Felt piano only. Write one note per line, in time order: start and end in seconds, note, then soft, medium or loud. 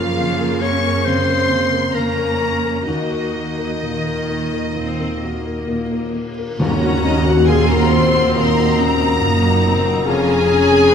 0.00 1.03 F#2 medium
0.00 0.12 C#4 soft
0.00 0.41 A#4 soft
0.20 0.55 C#3 soft
0.41 0.76 A#4 soft
0.64 0.98 A#3 soft
0.85 1.20 A#4 soft
1.07 1.42 C#3 soft
1.29 1.64 A#4 soft
1.50 1.86 C#3 soft
1.73 2.08 A#4 soft
1.94 2.31 C#3 soft
2.17 2.54 A#4 soft
2.40 2.77 A#3 soft
2.64 2.87 A#4 soft
2.88 4.72 D#2 soft
3.11 3.48 A#4 soft
3.34 3.72 F#4 soft
3.58 3.96 A#4 soft
3.83 4.20 A#2 soft
4.06 4.43 A#4 soft
4.29 4.67 A#3 soft
4.53 4.90 A#4 soft
4.76 5.13 A#2 soft
5.00 5.36 A#4 soft
5.23 5.59 F#4 soft
5.45 5.82 A#4 soft
5.68 6.05 A#2 soft
5.92 6.28 A#4 soft
6.15 6.51 A#3 soft
6.39 6.60 A#4 soft
6.61 8.31 D#2 medium
6.83 7.17 F#4 medium
7.04 7.39 C#4 medium
7.26 7.60 F#4 medium
7.49 7.82 A#2 medium
7.71 8.05 F#4 medium
7.92 8.26 A#3 medium
8.14 8.48 F#4 medium
8.36 8.70 A#2 medium
8.57 8.91 F#4 medium
8.78 9.12 C#4 medium
9.01 9.34 F#4 medium
9.21 9.55 A#2 medium
9.42 9.76 F#4 medium
9.64 9.98 A#3 soft
9.86 10.07 F#4 medium
10.08 10.95 F2 medium
10.29 10.62 G#4 medium
10.51 10.84 C#4 medium
10.72 10.95 G#4 medium